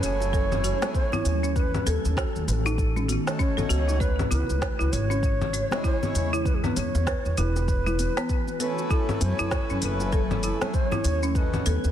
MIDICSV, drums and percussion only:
0, 0, Header, 1, 2, 480
1, 0, Start_track
1, 0, Tempo, 612245
1, 1221, Time_signature, 4, 2, 24, 8
1, 9342, End_track
2, 0, Start_track
2, 0, Title_t, "Drums"
2, 24, Note_on_c, 9, 46, 80
2, 25, Note_on_c, 9, 82, 76
2, 102, Note_off_c, 9, 46, 0
2, 103, Note_off_c, 9, 82, 0
2, 161, Note_on_c, 9, 60, 54
2, 170, Note_on_c, 9, 82, 38
2, 240, Note_off_c, 9, 60, 0
2, 249, Note_off_c, 9, 82, 0
2, 262, Note_on_c, 9, 36, 107
2, 266, Note_on_c, 9, 82, 45
2, 340, Note_off_c, 9, 36, 0
2, 344, Note_off_c, 9, 82, 0
2, 408, Note_on_c, 9, 64, 77
2, 409, Note_on_c, 9, 82, 33
2, 486, Note_off_c, 9, 64, 0
2, 487, Note_off_c, 9, 82, 0
2, 504, Note_on_c, 9, 46, 82
2, 504, Note_on_c, 9, 82, 79
2, 582, Note_off_c, 9, 46, 0
2, 583, Note_off_c, 9, 82, 0
2, 642, Note_on_c, 9, 60, 54
2, 644, Note_on_c, 9, 63, 76
2, 645, Note_on_c, 9, 38, 84
2, 646, Note_on_c, 9, 82, 34
2, 647, Note_on_c, 9, 64, 95
2, 721, Note_off_c, 9, 60, 0
2, 722, Note_off_c, 9, 63, 0
2, 724, Note_off_c, 9, 38, 0
2, 724, Note_off_c, 9, 82, 0
2, 725, Note_off_c, 9, 64, 0
2, 741, Note_on_c, 9, 36, 110
2, 744, Note_on_c, 9, 82, 44
2, 819, Note_off_c, 9, 36, 0
2, 822, Note_off_c, 9, 82, 0
2, 880, Note_on_c, 9, 60, 65
2, 887, Note_on_c, 9, 63, 69
2, 888, Note_on_c, 9, 64, 62
2, 888, Note_on_c, 9, 82, 32
2, 958, Note_off_c, 9, 60, 0
2, 965, Note_off_c, 9, 63, 0
2, 966, Note_off_c, 9, 64, 0
2, 967, Note_off_c, 9, 82, 0
2, 982, Note_on_c, 9, 46, 79
2, 983, Note_on_c, 9, 82, 80
2, 1061, Note_off_c, 9, 46, 0
2, 1061, Note_off_c, 9, 82, 0
2, 1129, Note_on_c, 9, 82, 35
2, 1207, Note_off_c, 9, 82, 0
2, 1222, Note_on_c, 9, 36, 101
2, 1224, Note_on_c, 9, 82, 43
2, 1300, Note_off_c, 9, 36, 0
2, 1303, Note_off_c, 9, 82, 0
2, 1368, Note_on_c, 9, 64, 75
2, 1369, Note_on_c, 9, 82, 31
2, 1447, Note_off_c, 9, 64, 0
2, 1447, Note_off_c, 9, 82, 0
2, 1460, Note_on_c, 9, 63, 71
2, 1464, Note_on_c, 9, 46, 81
2, 1465, Note_on_c, 9, 82, 72
2, 1538, Note_off_c, 9, 63, 0
2, 1543, Note_off_c, 9, 46, 0
2, 1543, Note_off_c, 9, 82, 0
2, 1608, Note_on_c, 9, 82, 38
2, 1687, Note_off_c, 9, 82, 0
2, 1700, Note_on_c, 9, 36, 108
2, 1706, Note_on_c, 9, 38, 80
2, 1707, Note_on_c, 9, 82, 45
2, 1779, Note_off_c, 9, 36, 0
2, 1785, Note_off_c, 9, 38, 0
2, 1785, Note_off_c, 9, 82, 0
2, 1850, Note_on_c, 9, 82, 31
2, 1928, Note_off_c, 9, 82, 0
2, 1947, Note_on_c, 9, 46, 76
2, 1948, Note_on_c, 9, 82, 75
2, 2025, Note_off_c, 9, 46, 0
2, 2026, Note_off_c, 9, 82, 0
2, 2081, Note_on_c, 9, 60, 54
2, 2090, Note_on_c, 9, 82, 35
2, 2159, Note_off_c, 9, 60, 0
2, 2169, Note_off_c, 9, 82, 0
2, 2181, Note_on_c, 9, 36, 100
2, 2184, Note_on_c, 9, 82, 43
2, 2259, Note_off_c, 9, 36, 0
2, 2263, Note_off_c, 9, 82, 0
2, 2324, Note_on_c, 9, 64, 95
2, 2325, Note_on_c, 9, 60, 36
2, 2327, Note_on_c, 9, 82, 31
2, 2403, Note_off_c, 9, 64, 0
2, 2404, Note_off_c, 9, 60, 0
2, 2406, Note_off_c, 9, 82, 0
2, 2421, Note_on_c, 9, 60, 34
2, 2423, Note_on_c, 9, 46, 83
2, 2424, Note_on_c, 9, 63, 74
2, 2424, Note_on_c, 9, 82, 75
2, 2499, Note_off_c, 9, 60, 0
2, 2502, Note_off_c, 9, 46, 0
2, 2502, Note_off_c, 9, 82, 0
2, 2503, Note_off_c, 9, 63, 0
2, 2567, Note_on_c, 9, 38, 74
2, 2567, Note_on_c, 9, 82, 34
2, 2645, Note_off_c, 9, 38, 0
2, 2646, Note_off_c, 9, 82, 0
2, 2661, Note_on_c, 9, 36, 115
2, 2664, Note_on_c, 9, 82, 44
2, 2739, Note_off_c, 9, 36, 0
2, 2742, Note_off_c, 9, 82, 0
2, 2805, Note_on_c, 9, 63, 80
2, 2808, Note_on_c, 9, 64, 61
2, 2808, Note_on_c, 9, 82, 34
2, 2884, Note_off_c, 9, 63, 0
2, 2886, Note_off_c, 9, 64, 0
2, 2887, Note_off_c, 9, 82, 0
2, 2896, Note_on_c, 9, 63, 61
2, 2902, Note_on_c, 9, 46, 83
2, 2902, Note_on_c, 9, 82, 78
2, 2974, Note_off_c, 9, 63, 0
2, 2980, Note_off_c, 9, 46, 0
2, 2981, Note_off_c, 9, 82, 0
2, 3044, Note_on_c, 9, 60, 37
2, 3048, Note_on_c, 9, 82, 35
2, 3122, Note_off_c, 9, 60, 0
2, 3126, Note_off_c, 9, 82, 0
2, 3140, Note_on_c, 9, 36, 106
2, 3145, Note_on_c, 9, 82, 41
2, 3218, Note_off_c, 9, 36, 0
2, 3223, Note_off_c, 9, 82, 0
2, 3288, Note_on_c, 9, 64, 79
2, 3288, Note_on_c, 9, 82, 30
2, 3366, Note_off_c, 9, 64, 0
2, 3367, Note_off_c, 9, 82, 0
2, 3378, Note_on_c, 9, 63, 79
2, 3383, Note_on_c, 9, 46, 80
2, 3383, Note_on_c, 9, 82, 77
2, 3456, Note_off_c, 9, 63, 0
2, 3461, Note_off_c, 9, 46, 0
2, 3462, Note_off_c, 9, 82, 0
2, 3525, Note_on_c, 9, 82, 36
2, 3604, Note_off_c, 9, 82, 0
2, 3619, Note_on_c, 9, 36, 101
2, 3622, Note_on_c, 9, 38, 78
2, 3622, Note_on_c, 9, 82, 46
2, 3698, Note_off_c, 9, 36, 0
2, 3700, Note_off_c, 9, 38, 0
2, 3701, Note_off_c, 9, 82, 0
2, 3767, Note_on_c, 9, 82, 32
2, 3845, Note_off_c, 9, 82, 0
2, 3864, Note_on_c, 9, 46, 79
2, 3865, Note_on_c, 9, 82, 73
2, 3943, Note_off_c, 9, 46, 0
2, 3943, Note_off_c, 9, 82, 0
2, 4005, Note_on_c, 9, 60, 51
2, 4008, Note_on_c, 9, 82, 34
2, 4083, Note_off_c, 9, 60, 0
2, 4086, Note_off_c, 9, 82, 0
2, 4099, Note_on_c, 9, 36, 105
2, 4103, Note_on_c, 9, 82, 44
2, 4178, Note_off_c, 9, 36, 0
2, 4181, Note_off_c, 9, 82, 0
2, 4245, Note_on_c, 9, 64, 84
2, 4246, Note_on_c, 9, 82, 31
2, 4323, Note_off_c, 9, 64, 0
2, 4324, Note_off_c, 9, 82, 0
2, 4341, Note_on_c, 9, 46, 80
2, 4341, Note_on_c, 9, 82, 73
2, 4419, Note_off_c, 9, 46, 0
2, 4420, Note_off_c, 9, 82, 0
2, 4479, Note_on_c, 9, 63, 78
2, 4482, Note_on_c, 9, 64, 78
2, 4486, Note_on_c, 9, 38, 77
2, 4486, Note_on_c, 9, 82, 34
2, 4488, Note_on_c, 9, 60, 51
2, 4557, Note_off_c, 9, 63, 0
2, 4561, Note_off_c, 9, 64, 0
2, 4564, Note_off_c, 9, 38, 0
2, 4565, Note_off_c, 9, 82, 0
2, 4566, Note_off_c, 9, 60, 0
2, 4580, Note_on_c, 9, 36, 98
2, 4582, Note_on_c, 9, 82, 44
2, 4659, Note_off_c, 9, 36, 0
2, 4660, Note_off_c, 9, 82, 0
2, 4725, Note_on_c, 9, 60, 64
2, 4727, Note_on_c, 9, 64, 62
2, 4728, Note_on_c, 9, 63, 78
2, 4728, Note_on_c, 9, 82, 34
2, 4803, Note_off_c, 9, 60, 0
2, 4806, Note_off_c, 9, 63, 0
2, 4806, Note_off_c, 9, 64, 0
2, 4806, Note_off_c, 9, 82, 0
2, 4823, Note_on_c, 9, 46, 83
2, 4823, Note_on_c, 9, 82, 78
2, 4901, Note_off_c, 9, 46, 0
2, 4902, Note_off_c, 9, 82, 0
2, 4969, Note_on_c, 9, 82, 34
2, 5048, Note_off_c, 9, 82, 0
2, 5060, Note_on_c, 9, 36, 100
2, 5064, Note_on_c, 9, 82, 45
2, 5139, Note_off_c, 9, 36, 0
2, 5142, Note_off_c, 9, 82, 0
2, 5206, Note_on_c, 9, 64, 81
2, 5207, Note_on_c, 9, 82, 30
2, 5284, Note_off_c, 9, 64, 0
2, 5285, Note_off_c, 9, 82, 0
2, 5304, Note_on_c, 9, 46, 84
2, 5304, Note_on_c, 9, 82, 67
2, 5305, Note_on_c, 9, 63, 70
2, 5382, Note_off_c, 9, 46, 0
2, 5383, Note_off_c, 9, 63, 0
2, 5383, Note_off_c, 9, 82, 0
2, 5448, Note_on_c, 9, 82, 36
2, 5527, Note_off_c, 9, 82, 0
2, 5541, Note_on_c, 9, 36, 94
2, 5544, Note_on_c, 9, 38, 74
2, 5544, Note_on_c, 9, 82, 48
2, 5620, Note_off_c, 9, 36, 0
2, 5622, Note_off_c, 9, 38, 0
2, 5623, Note_off_c, 9, 82, 0
2, 5687, Note_on_c, 9, 82, 30
2, 5766, Note_off_c, 9, 82, 0
2, 5782, Note_on_c, 9, 46, 82
2, 5782, Note_on_c, 9, 82, 74
2, 5860, Note_off_c, 9, 46, 0
2, 5861, Note_off_c, 9, 82, 0
2, 5928, Note_on_c, 9, 82, 34
2, 5930, Note_on_c, 9, 60, 55
2, 6007, Note_off_c, 9, 82, 0
2, 6008, Note_off_c, 9, 60, 0
2, 6023, Note_on_c, 9, 36, 98
2, 6024, Note_on_c, 9, 82, 40
2, 6101, Note_off_c, 9, 36, 0
2, 6102, Note_off_c, 9, 82, 0
2, 6166, Note_on_c, 9, 64, 86
2, 6169, Note_on_c, 9, 60, 35
2, 6169, Note_on_c, 9, 82, 29
2, 6245, Note_off_c, 9, 64, 0
2, 6247, Note_off_c, 9, 82, 0
2, 6248, Note_off_c, 9, 60, 0
2, 6264, Note_on_c, 9, 46, 84
2, 6265, Note_on_c, 9, 82, 70
2, 6266, Note_on_c, 9, 63, 74
2, 6343, Note_off_c, 9, 46, 0
2, 6343, Note_off_c, 9, 82, 0
2, 6344, Note_off_c, 9, 63, 0
2, 6407, Note_on_c, 9, 38, 72
2, 6407, Note_on_c, 9, 82, 31
2, 6485, Note_off_c, 9, 38, 0
2, 6486, Note_off_c, 9, 82, 0
2, 6502, Note_on_c, 9, 36, 106
2, 6502, Note_on_c, 9, 82, 42
2, 6581, Note_off_c, 9, 36, 0
2, 6581, Note_off_c, 9, 82, 0
2, 6643, Note_on_c, 9, 63, 69
2, 6648, Note_on_c, 9, 82, 30
2, 6722, Note_off_c, 9, 63, 0
2, 6726, Note_off_c, 9, 82, 0
2, 6743, Note_on_c, 9, 46, 88
2, 6744, Note_on_c, 9, 63, 61
2, 6744, Note_on_c, 9, 82, 72
2, 6821, Note_off_c, 9, 46, 0
2, 6822, Note_off_c, 9, 63, 0
2, 6822, Note_off_c, 9, 82, 0
2, 6885, Note_on_c, 9, 60, 38
2, 6887, Note_on_c, 9, 82, 34
2, 6963, Note_off_c, 9, 60, 0
2, 6965, Note_off_c, 9, 82, 0
2, 6981, Note_on_c, 9, 36, 103
2, 6983, Note_on_c, 9, 82, 44
2, 7060, Note_off_c, 9, 36, 0
2, 7061, Note_off_c, 9, 82, 0
2, 7126, Note_on_c, 9, 64, 82
2, 7127, Note_on_c, 9, 82, 29
2, 7204, Note_off_c, 9, 64, 0
2, 7205, Note_off_c, 9, 82, 0
2, 7217, Note_on_c, 9, 63, 73
2, 7221, Note_on_c, 9, 46, 89
2, 7221, Note_on_c, 9, 82, 69
2, 7296, Note_off_c, 9, 63, 0
2, 7299, Note_off_c, 9, 46, 0
2, 7300, Note_off_c, 9, 82, 0
2, 7363, Note_on_c, 9, 82, 35
2, 7441, Note_off_c, 9, 82, 0
2, 7459, Note_on_c, 9, 38, 79
2, 7459, Note_on_c, 9, 82, 45
2, 7460, Note_on_c, 9, 36, 98
2, 7537, Note_off_c, 9, 38, 0
2, 7538, Note_off_c, 9, 82, 0
2, 7539, Note_off_c, 9, 36, 0
2, 7603, Note_on_c, 9, 82, 29
2, 7681, Note_off_c, 9, 82, 0
2, 7697, Note_on_c, 9, 46, 86
2, 7698, Note_on_c, 9, 82, 68
2, 7776, Note_off_c, 9, 46, 0
2, 7776, Note_off_c, 9, 82, 0
2, 7841, Note_on_c, 9, 82, 32
2, 7843, Note_on_c, 9, 60, 56
2, 7920, Note_off_c, 9, 82, 0
2, 7921, Note_off_c, 9, 60, 0
2, 7937, Note_on_c, 9, 82, 41
2, 7939, Note_on_c, 9, 36, 101
2, 8016, Note_off_c, 9, 82, 0
2, 8018, Note_off_c, 9, 36, 0
2, 8083, Note_on_c, 9, 64, 86
2, 8083, Note_on_c, 9, 82, 32
2, 8161, Note_off_c, 9, 64, 0
2, 8162, Note_off_c, 9, 82, 0
2, 8178, Note_on_c, 9, 46, 90
2, 8178, Note_on_c, 9, 82, 70
2, 8256, Note_off_c, 9, 46, 0
2, 8257, Note_off_c, 9, 82, 0
2, 8321, Note_on_c, 9, 60, 49
2, 8322, Note_on_c, 9, 38, 75
2, 8323, Note_on_c, 9, 82, 31
2, 8324, Note_on_c, 9, 63, 77
2, 8324, Note_on_c, 9, 64, 73
2, 8400, Note_off_c, 9, 60, 0
2, 8401, Note_off_c, 9, 38, 0
2, 8401, Note_off_c, 9, 82, 0
2, 8403, Note_off_c, 9, 63, 0
2, 8403, Note_off_c, 9, 64, 0
2, 8419, Note_on_c, 9, 82, 42
2, 8420, Note_on_c, 9, 36, 107
2, 8498, Note_off_c, 9, 36, 0
2, 8498, Note_off_c, 9, 82, 0
2, 8557, Note_on_c, 9, 60, 63
2, 8562, Note_on_c, 9, 64, 69
2, 8562, Note_on_c, 9, 82, 31
2, 8563, Note_on_c, 9, 63, 80
2, 8636, Note_off_c, 9, 60, 0
2, 8640, Note_off_c, 9, 64, 0
2, 8641, Note_off_c, 9, 63, 0
2, 8641, Note_off_c, 9, 82, 0
2, 8659, Note_on_c, 9, 46, 92
2, 8659, Note_on_c, 9, 82, 77
2, 8737, Note_off_c, 9, 46, 0
2, 8738, Note_off_c, 9, 82, 0
2, 8804, Note_on_c, 9, 82, 33
2, 8882, Note_off_c, 9, 82, 0
2, 8899, Note_on_c, 9, 36, 103
2, 8901, Note_on_c, 9, 82, 43
2, 8978, Note_off_c, 9, 36, 0
2, 8979, Note_off_c, 9, 82, 0
2, 9044, Note_on_c, 9, 64, 78
2, 9045, Note_on_c, 9, 82, 27
2, 9123, Note_off_c, 9, 64, 0
2, 9123, Note_off_c, 9, 82, 0
2, 9140, Note_on_c, 9, 46, 87
2, 9141, Note_on_c, 9, 63, 80
2, 9141, Note_on_c, 9, 82, 70
2, 9219, Note_off_c, 9, 46, 0
2, 9219, Note_off_c, 9, 63, 0
2, 9220, Note_off_c, 9, 82, 0
2, 9285, Note_on_c, 9, 82, 34
2, 9342, Note_off_c, 9, 82, 0
2, 9342, End_track
0, 0, End_of_file